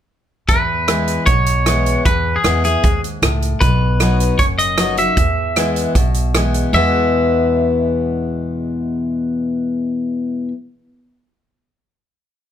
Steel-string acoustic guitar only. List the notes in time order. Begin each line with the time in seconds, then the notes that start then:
0.49 E2
0.88 E3 G#3 B3 E4
1.27 B2
1.66 E3 G#3 B3 E4
2.06 E2
2.44 E3 G#3 B3 E4
2.64 B3 E4
2.84 G#2
3.22 A2
3.61 B2
4.00 F#3 B3 D#4 F#4
4.40 F#2
4.78 F#3 B3 D#4 F#4
4.98 D#4 F#4
5.17 E2
5.56 E3 G#3 B3 E4
5.96 B2
6.35 E3 G#3 B3 E4
6.73 E2 B2 E3 G#3 B3 E4